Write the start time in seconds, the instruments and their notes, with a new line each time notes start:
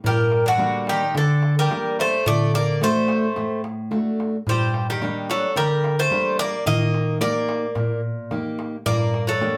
0.04 steel-string acoustic guitar G2, bouzouki G3 A#4, darbuka dum
0.32 darbuka tek
0.46 bouzouki D3 F#4
0.58 steel-string acoustic guitar G3 A#3 D4, darbuka tek
0.87 bouzouki D#3 G4, darbuka tek
1.02 darbuka tek
1.14 steel-string acoustic guitar D3, bouzouki D3 A4, darbuka tek
1.29 darbuka tek
1.43 darbuka tek
1.59 bouzouki G3 A#4
1.70 steel-string acoustic guitar G3 A#3 D4, darbuka tek
1.99 bouzouki A3 C5, darbuka tek
2.26 steel-string acoustic guitar D3, bouzouki A3 D5, darbuka dum
2.54 bouzouki A#3 D5, darbuka tek
2.81 steel-string acoustic guitar A3 D4 F#4, bouzouki A3 C5, darbuka tek
3.08 darbuka tek
3.23 darbuka tek
3.36 steel-string acoustic guitar A2, darbuka tek
3.51 darbuka tek
3.64 darbuka tek
3.91 steel-string acoustic guitar A3 D4 F#4, darbuka tek
4.20 darbuka tek
4.47 steel-string acoustic guitar G2, bouzouki G3 C5, darbuka dum
4.74 darbuka tek
4.90 bouzouki D#3 G4
5.01 steel-string acoustic guitar G3 A#3 D4, darbuka tek
5.29 bouzouki F#3 A4, darbuka tek
5.44 darbuka tek
5.56 steel-string acoustic guitar D3, bouzouki G3 A#4, darbuka tek
5.70 darbuka tek
5.84 darbuka tek
5.99 bouzouki A3 C5
6.10 steel-string acoustic guitar G3 A#3 D4, darbuka tek
6.39 bouzouki A#3 D5, darbuka tek
6.66 steel-string acoustic guitar D#3, bouzouki A#3 D#5, darbuka dum
6.81 darbuka tek
6.94 darbuka tek
7.08 darbuka tek
7.21 steel-string acoustic guitar A#3 D#4 G4, bouzouki A#3 D5, darbuka tek
7.49 darbuka tek
7.63 darbuka tek
7.75 steel-string acoustic guitar A#2, darbuka tek, darbuka dum
7.90 darbuka tek
8.31 steel-string acoustic guitar A#3 D#4 G4, darbuka tek
8.45 darbuka tek
8.59 darbuka tek
8.86 steel-string acoustic guitar G2, bouzouki A#3 D5, darbuka dum
9.14 darbuka tek
9.27 bouzouki F#3 A4
9.41 steel-string acoustic guitar A#3 D4 G4, darbuka tek